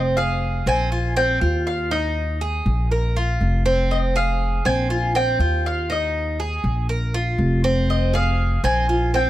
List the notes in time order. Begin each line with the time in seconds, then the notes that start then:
Already playing: F1 C4
0.17 G#4 F5
0.66 A#1 C4 G#5
0.92 F4
1.17 C4 G5
1.41 D#2 F4
1.67 F5
1.91 D#4 D#5
2.41 G#4
2.66 A#1
2.91 A#4
3.17 F4
3.41 F1
3.66 C4
3.91 D#5
4.16 G#4 F5
4.65 A#1 C4 G#5
4.90 F4
5.15 C4 G5
5.39 D#2 F4
5.66 F5
5.90 D#4 D#5
6.40 G#4
6.64 A#1
6.89 A#4
7.14 F4
7.38 F1
7.64 C4
7.90 D#5
8.13 G#4 F5
8.64 A#1 C4 G#5
8.89 F4
9.14 C4 G5